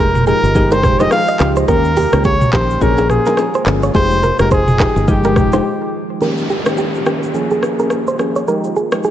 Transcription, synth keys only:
0.27 0.49 F3 medium
0.27 0.49 G#3 medium
0.27 0.49 D#4 medium
0.27 0.49 G4 medium
0.55 0.96 F3 medium
0.55 0.96 G#3 medium
0.55 0.96 D#4 medium
0.55 0.96 G4 loud
0.99 1.20 F3 medium
0.99 1.20 G#3 medium
0.99 1.20 D#4 medium
0.99 1.20 G4 medium
1.40 1.62 F3 medium
1.40 1.62 G#3 medium
1.40 1.62 D#4 medium
1.40 1.63 G4 medium
1.68 1.91 D#3 medium
1.68 1.91 A#3 medium
1.68 1.91 C#4 medium
1.68 1.91 G4 loud
2.13 2.33 D#3 medium
2.13 2.33 A#3 medium
2.13 2.33 C#4 medium
2.13 2.33 G4 medium
2.53 2.75 D#3 medium
2.53 2.75 A#3 medium
2.53 2.76 C#4 medium
2.53 2.76 G4 medium
2.81 3.22 F3 loud
2.81 3.22 A#3 medium
2.81 3.22 C#4 medium
2.81 3.22 G#4 loud
3.26 3.46 F3 medium
3.26 3.46 A#3 medium
3.26 3.46 C#4 medium
3.26 3.46 G#4 medium
3.66 3.89 F3 medium
3.66 3.89 A#3 medium
3.66 3.89 C#4 medium
3.66 3.89 G#4 medium
3.94 4.17 F3 loud
3.94 4.17 G#3 medium
3.94 4.17 D#4 medium
3.94 4.17 G4 loud
4.39 4.59 F3 medium
4.39 4.59 G#3 medium
4.39 4.60 D#4 medium
4.39 4.60 G4 medium
4.79 5.02 F3 medium
4.79 5.02 G#3 medium
4.79 5.02 D#4 medium
4.79 5.02 G4 medium
5.08 5.49 F3 medium
5.08 5.49 G#3 medium
5.08 5.49 D#4 medium
5.08 5.49 G4 loud
5.53 5.65 F3 medium
5.53 5.65 G#3 medium
5.53 5.65 D#4 medium
5.53 5.65 G4 medium
6.21 6.43 D#3 medium
6.21 6.43 A#3 medium
6.21 6.44 C#4 medium
6.21 6.44 G4 medium
6.66 7.03 D#3 medium
6.66 7.03 A#3 medium
6.66 7.03 C#4 medium
6.66 7.03 G4 medium
7.05 7.32 D#3 medium
7.05 7.32 A#3 medium
7.05 7.32 C#4 medium
7.05 7.33 G4 medium
7.34 7.75 F3 medium
7.34 7.75 A#3 medium
7.34 7.75 C#4 medium
7.34 7.75 G#4 loud
7.79 7.99 F3 medium
7.79 7.99 A#3 medium
7.79 7.99 C#4 medium
7.79 7.99 G#4 medium
8.19 8.42 F3 medium
8.19 8.42 A#3 medium
8.19 8.42 C#4 medium
8.19 8.42 G#4 medium
8.48 8.70 F3 medium
8.48 8.70 G#3 medium
8.48 8.70 D#4 medium
8.48 8.70 G4 loud
8.92 9.11 F3 medium
8.92 9.11 G#3 medium
8.92 9.11 D#4 medium
8.92 9.11 G4 medium

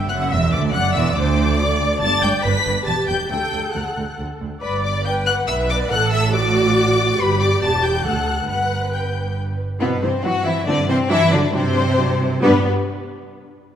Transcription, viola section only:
0.00 0.70 E5 medium
0.74 1.16 D5 medium
1.15 1.58 C5 loud
1.59 2.01 D5 loud
2.02 2.43 D5 loud
2.44 2.87 B4 medium
2.87 3.30 G4 medium
3.29 4.38 A4 medium
4.62 5.02 D5 medium
5.06 5.48 B4 medium
5.49 5.91 B4 medium
5.92 6.35 A4 loud
6.34 7.20 F#4 loud
7.21 8.06 G4 loud
8.06 8.49 A4 medium
8.49 9.57 B4 medium
9.80 9.88 E3 medium
9.80 9.89 C4 medium
10.02 10.10 E3 medium
10.02 10.10 C4 medium
10.24 10.32 E3 medium
10.24 10.32 C4 medium
10.45 10.53 E3 medium
10.45 10.54 C4 medium
10.67 10.75 E3 medium
10.67 10.75 C4 medium
10.88 10.96 E3 medium
10.88 10.96 C4 medium
11.09 11.17 F#3 medium
11.09 11.17 D4 loud
11.31 11.39 F#3 medium
11.31 11.39 D4 medium
11.53 11.61 F#3 medium
11.53 11.61 D4 medium
11.75 11.83 F#3 medium
11.75 11.84 D4 medium
11.98 12.06 F#3 medium
11.98 12.06 D4 medium
12.20 12.28 F#3 medium
12.20 12.28 D4 medium
12.43 12.68 G3 medium
12.43 12.68 D4 loud

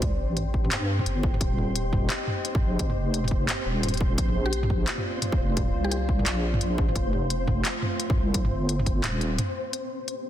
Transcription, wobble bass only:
0.00 0.18 D2 loud
0.19 0.70 A1 loud
0.71 1.05 G2 medium
1.06 1.40 G1 loud
1.41 2.09 D#1 medium
2.62 2.96 A#1 medium
2.97 3.48 F1 loud
3.66 4.17 D#1 loud
4.18 4.86 A#1 medium
5.39 5.73 F1 loud
5.74 6.25 C2 loud
6.26 6.60 A#1 medium
6.61 6.94 A#1 loud
6.96 7.64 F1 medium
8.17 8.51 C2 loud
8.52 9.02 G1 loud
9.04 9.38 D#1 loud

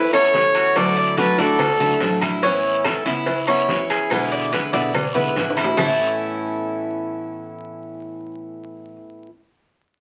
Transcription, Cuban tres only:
0.00 0.12 E4 medium
0.13 0.54 C#5 medium
0.55 0.95 F#4 medium
0.97 1.17 D5 medium
1.17 1.38 A4 medium
1.39 1.79 D5 medium
1.80 2.21 A4 medium
2.22 2.42 E4 medium
2.43 2.83 C#4 medium
2.85 3.05 A4 medium
3.06 3.46 E4 medium
3.48 3.88 C#5 medium
3.90 4.30 G#4 medium
4.32 4.52 D5 medium
4.53 4.73 B4 medium
4.73 5.14 D5 medium
5.15 5.56 B4 medium
5.57 5.77 E4 medium
5.77 8.96 A3 medium
5.77 8.96 E4 medium
5.77 8.97 A4 medium

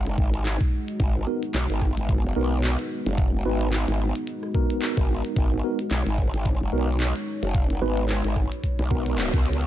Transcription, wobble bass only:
0.00 0.16 F#1 loud
0.18 0.58 G#1 loud
1.00 1.25 G#1 loud
1.54 1.68 B1 loud
1.70 1.95 G#1 loud
1.97 2.22 G#1 loud
2.24 2.34 F#1 loud
2.36 2.77 B1 medium
3.06 3.44 F#1 loud
3.45 3.86 G#1 loud
3.88 4.13 G#1 loud
4.97 5.22 G#1 loud
5.36 5.62 G#1 medium
5.91 6.04 B1 loud
6.06 6.31 G#1 loud
6.34 6.59 G#1 loud
6.61 6.71 F#1 loud
6.73 7.13 B1 loud
7.43 7.80 F#1 loud
7.82 8.22 G#1 loud
8.25 8.49 G#1 loud
8.79 9.31 B1 loud
9.34 9.67 C#2 loud

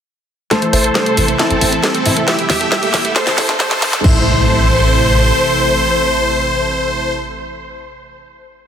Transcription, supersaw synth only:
0.51 0.66 A4 medium
0.51 0.67 C5 loud
0.73 0.89 A4 medium
0.73 0.89 C5 medium
0.95 1.26 A4 medium
0.95 1.26 C5 loud
1.39 1.70 C4 medium
1.39 1.70 A4 loud
1.83 2.14 C4 medium
1.83 2.14 A4 medium
2.28 2.43 G4 medium
2.28 2.43 E5 loud
2.50 2.65 G4 medium
2.50 2.65 E5 medium
2.72 3.03 G4 medium
2.72 3.03 E5 loud
3.16 3.47 A4 medium
3.16 3.47 C5 loud
3.60 3.91 A4 medium
3.60 3.91 C5 medium
4.04 7.13 C5 loud

